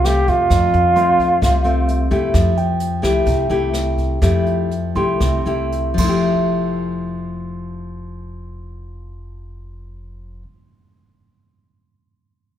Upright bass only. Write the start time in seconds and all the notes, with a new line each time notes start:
Already playing: C2
0.28 F2
0.50 F2
0.74 F2
1.42 C2
2.11 F2
2.34 F2
3.03 C2
3.26 C2
3.50 C2
4.22 F2
4.95 C2
5.21 C2
5.45 C2
5.98 F1